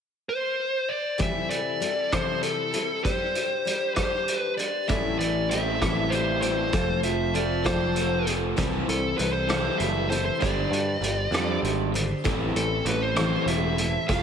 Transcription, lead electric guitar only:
0.29 0.91 C5 medium
0.89 1.17 D5 medium
1.23 1.50 E5 medium
1.50 2.14 D5 medium
2.13 2.43 C5 medium
2.43 3.04 A4 medium
3.04 3.92 C5 medium
3.95 4.37 C5 medium
4.37 4.53 B4 medium
4.58 4.88 D5 medium
4.89 5.18 E5 medium
5.19 5.48 D5 medium
5.51 6.14 E5 medium
6.10 6.41 C5 medium
6.42 6.99 C5 medium
7.04 7.35 E5 medium
7.36 7.66 D5 medium
7.66 8.30 C5 medium
8.89 9.17 A4 medium
9.18 9.32 B4 medium
9.33 9.80 C5 medium
9.78 10.07 E5 medium
10.10 10.24 C5 medium
10.25 10.40 C5 medium
10.40 11.59 D5 medium
12.56 12.84 A4 medium
12.88 13.02 B4 medium
13.02 13.48 C5 medium
13.48 14.08 E5 medium
14.08 14.23 F5 medium

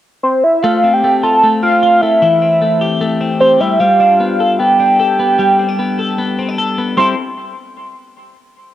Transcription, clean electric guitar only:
0.64 1.04 A3 medium
0.84 1.62 C4 medium
1.04 1.43 A3 medium
1.23 1.82 F4 medium
1.43 2.02 A3 medium
1.63 2.26 C4 medium
1.83 2.26 F4 medium
2.03 2.61 A3 medium
2.22 3.60 E3 medium
2.42 3.20 C4 medium
2.62 3.01 A3 medium
2.81 3.40 G4 medium
3.01 3.83 A3 medium
3.21 3.65 C4 medium
3.41 4.40 G4 medium
3.61 3.80 G3 medium
3.80 5.39 G3 medium
4.00 4.79 D4 medium
4.20 4.59 B3 medium
4.40 4.99 A4 medium
4.60 5.18 B3 medium
4.80 5.59 D4 medium
5.00 5.99 A4 medium
5.19 5.78 B3 medium
5.39 6.97 G3 medium
5.59 5.69 C4 medium
5.69 6.38 D4 medium
5.79 6.17 B3 medium
5.99 6.58 A4 medium
6.18 6.77 B3 medium
6.39 6.48 C4 medium
6.48 6.99 D4 medium
6.58 6.99 A4 medium
6.78 6.98 B3 medium
6.97 7.13 G3 medium
6.97 7.14 C4 medium
6.97 7.14 E4 medium
6.97 7.15 A4 medium

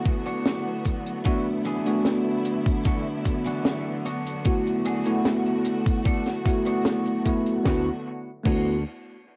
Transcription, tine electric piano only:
0.00 1.25 A3 loud
0.00 1.25 B3 medium
0.00 1.27 E4 medium
0.00 1.26 F#4 loud
1.25 1.81 A3 medium
1.25 1.81 B3 medium
1.25 1.81 D4 medium
1.25 1.82 F#4 loud
1.86 2.02 A3 loud
1.86 2.02 B3 medium
1.86 2.02 D4 medium
1.86 2.02 F#4 loud
4.45 5.01 A3 medium
4.45 5.01 B3 medium
4.45 5.01 E4 medium
4.45 5.02 F#4 loud
5.06 5.22 A3 loud
5.06 5.22 B3 medium
5.06 5.22 E4 medium
5.06 5.22 F#4 loud
6.45 7.21 A3 loud
6.45 7.21 B3 medium
6.45 7.21 E4 medium
6.45 7.21 F#4 loud
7.25 7.42 A3 loud
7.25 7.42 B3 medium
7.25 7.43 E4 medium
7.25 7.43 F#4 loud
7.63 7.87 A3 medium
7.63 7.88 B3 medium
7.63 7.89 E4 medium
7.68 7.90 F#4 medium
8.43 8.74 A3 medium
8.43 8.75 B3 medium
8.43 8.76 E4 medium
8.48 8.77 F#4 medium

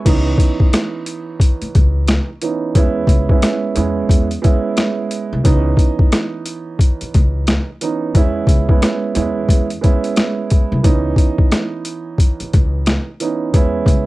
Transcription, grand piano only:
0.05 2.26 E3 medium
0.05 2.26 B3 medium
0.05 2.27 C#4 medium
0.05 2.27 D#4 loud
2.41 2.73 E3 medium
2.41 2.74 B3 medium
2.41 2.74 C#4 medium
2.41 2.74 D#4 medium
2.75 3.25 G#3 medium
2.75 3.25 B3 medium
2.75 3.26 C#4 medium
2.75 3.26 E4 loud
3.29 3.73 G#3 medium
3.29 3.73 B3 medium
3.29 3.74 C#4 medium
3.29 3.74 E4 medium
3.75 4.26 G#3 loud
3.75 4.26 B3 medium
3.75 4.26 C#4 medium
3.75 4.27 E4 loud
4.42 5.38 G#3 loud
4.42 5.38 B3 medium
4.42 5.39 C#4 medium
4.42 5.39 E4 loud
5.43 7.65 E3 medium
5.43 7.65 B3 medium
5.43 7.66 C#4 medium
5.43 7.66 D#4 loud
7.81 8.13 E3 medium
7.81 8.13 B3 medium
7.81 8.13 C#4 medium
7.81 8.14 D#4 medium
8.15 8.64 G#3 medium
8.15 8.65 B3 medium
8.15 8.65 C#4 medium
8.15 8.65 E4 loud
8.68 9.12 G#3 medium
8.68 9.13 B3 medium
8.68 9.13 C#4 medium
8.68 9.13 E4 medium
9.15 9.65 G#3 loud
9.15 9.65 B3 medium
9.15 9.66 C#4 medium
9.15 9.66 E4 loud
9.81 10.77 G#3 medium
9.81 10.78 B3 medium
9.81 10.78 C#4 medium
9.81 10.78 E4 loud
10.83 13.04 E3 medium
10.83 13.05 B3 medium
10.83 13.05 C#4 medium
10.83 13.05 D#4 loud
13.20 13.52 E3 medium
13.20 13.52 B3 medium
13.20 13.53 C#4 medium
13.20 13.53 D#4 medium
13.53 14.03 G#3 medium
13.53 14.04 B3 medium
13.53 14.04 C#4 medium
13.53 14.05 E4 loud

